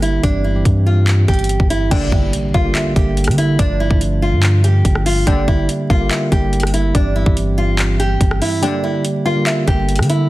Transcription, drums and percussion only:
0.03 closed hi-hat
0.23 kick, closed hi-hat
0.65 kick, closed hi-hat
1.07 clap, closed hi-hat
1.28 kick, closed hi-hat
1.34 closed hi-hat
1.39 closed hi-hat
1.44 closed hi-hat
1.49 closed hi-hat
1.60 kick
1.70 closed hi-hat
1.91 kick, closed hi-hat, crash
2.12 kick
2.33 closed hi-hat
2.54 kick
2.75 clap, closed hi-hat
2.96 kick, closed hi-hat
3.17 closed hi-hat
3.24 cross-stick, closed hi-hat
3.31 closed hi-hat
3.38 closed hi-hat
3.59 kick, closed hi-hat
3.91 kick
4.01 closed hi-hat
4.43 clap, closed hi-hat
4.64 closed hi-hat
4.85 kick, closed hi-hat
4.95 cross-stick
5.06 open hi-hat
5.27 kick, closed hi-hat
5.48 kick
5.69 closed hi-hat
5.90 kick
6.11 clap, closed hi-hat
6.32 kick, closed hi-hat
6.53 closed hi-hat
6.60 cross-stick, closed hi-hat
6.67 closed hi-hat
6.74 closed hi-hat
6.95 kick, closed hi-hat
7.26 kick
7.37 closed hi-hat
7.79 clap, closed hi-hat
8.00 closed hi-hat
8.21 kick, closed hi-hat
8.31 cross-stick
8.42 open hi-hat
8.63 closed hi-hat
9.05 closed hi-hat
9.47 clap, closed hi-hat
9.68 kick, closed hi-hat
9.89 closed hi-hat
9.96 cross-stick, closed hi-hat
10.03 closed hi-hat
10.10 closed hi-hat

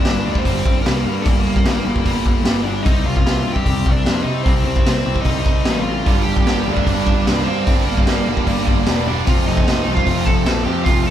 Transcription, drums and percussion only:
0.05 snare, open hi-hat
0.35 kick
0.45 kick, open hi-hat
0.66 kick
0.86 snare, open hi-hat
1.25 kick, open hi-hat
1.56 kick
1.65 snare, open hi-hat
1.96 kick
2.06 kick, open hi-hat
2.26 kick
2.45 snare, open hi-hat
2.86 kick, open hi-hat
3.16 kick
3.26 snare, open hi-hat
3.56 kick
3.66 kick, open hi-hat
3.86 kick
4.06 snare, open hi-hat
4.46 kick, open hi-hat
4.76 kick
4.86 snare, open hi-hat
5.16 kick
5.25 kick, open hi-hat
5.46 kick
5.65 snare, open hi-hat
6.06 kick, open hi-hat
6.37 kick
6.46 snare, open hi-hat
6.77 kick
6.87 kick, open hi-hat
7.07 kick
7.27 snare, open hi-hat
7.67 kick, open hi-hat
7.97 kick
8.07 snare, open hi-hat
8.37 kick
8.47 kick, open hi-hat
8.67 kick
8.86 snare, open hi-hat
9.27 kick, open hi-hat
9.57 kick
9.67 snare, open hi-hat
9.97 kick
10.07 kick, open hi-hat
10.27 kick
10.46 snare, open hi-hat
10.86 kick, open hi-hat

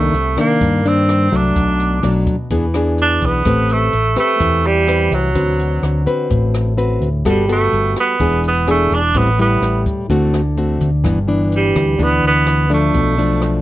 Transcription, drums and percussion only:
0.14 closed hi-hat
0.38 cross-stick, closed hi-hat
0.61 kick, closed hi-hat
0.86 closed hi-hat
1.09 cross-stick, closed hi-hat
1.33 closed hi-hat
1.56 kick, closed hi-hat
1.80 closed hi-hat
2.03 cross-stick, closed hi-hat
2.27 kick, closed hi-hat
2.50 kick, closed hi-hat
2.74 cross-stick, closed hi-hat
2.98 closed hi-hat
3.22 kick, closed hi-hat
3.45 kick, cross-stick, closed hi-hat
3.69 closed hi-hat
3.93 closed hi-hat
4.16 cross-stick, closed hi-hat
4.40 kick, closed hi-hat
4.64 closed hi-hat
4.88 cross-stick, closed hi-hat
5.12 closed hi-hat
5.35 kick, closed hi-hat
5.59 closed hi-hat
5.83 cross-stick, closed hi-hat
6.07 closed hi-hat
6.30 kick, closed hi-hat
6.54 cross-stick, closed hi-hat
6.78 closed hi-hat
7.02 closed hi-hat
7.25 kick, cross-stick, closed hi-hat
7.49 closed hi-hat
7.73 closed hi-hat
7.96 cross-stick, closed hi-hat
8.20 kick, closed hi-hat
8.44 closed hi-hat
8.68 cross-stick, closed hi-hat
8.92 closed hi-hat
9.14 kick, closed hi-hat
9.39 closed hi-hat
9.63 cross-stick, closed hi-hat
9.86 kick, closed hi-hat
10.10 kick, closed hi-hat
10.34 cross-stick, closed hi-hat
10.57 closed hi-hat
10.81 kick, closed hi-hat
11.05 kick, cross-stick, closed hi-hat
11.28 closed hi-hat
11.52 closed hi-hat
11.76 kick, cross-stick, closed hi-hat
11.99 kick, closed hi-hat
12.23 closed hi-hat
12.47 cross-stick, closed hi-hat
12.71 closed hi-hat
12.94 kick, closed hi-hat
13.18 closed hi-hat
13.42 cross-stick, closed hi-hat

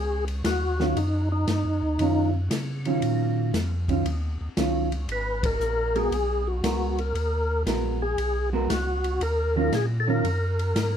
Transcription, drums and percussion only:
0.28 ride
0.44 snare, hi-hat pedal, ride
0.80 snare
0.97 ride
1.47 snare, hi-hat pedal, ride
1.99 ride
2.51 snare, hi-hat pedal, ride
2.85 ride
3.02 ride
3.54 snare, hi-hat pedal, ride
3.88 kick, ride
4.06 ride
4.57 snare, hi-hat pedal, ride
4.92 ride
5.09 ride
5.43 kick, ride
5.61 hi-hat pedal
5.95 ride
6.12 ride
6.64 snare, hi-hat pedal, ride
6.98 ride
7.15 ride
7.67 snare, hi-hat pedal, ride
8.18 ride
8.70 snare, hi-hat pedal, ride
9.04 ride
9.21 ride
9.72 snare, hi-hat pedal, ride
10.25 ride
10.59 ride
10.76 snare, hi-hat pedal, ride

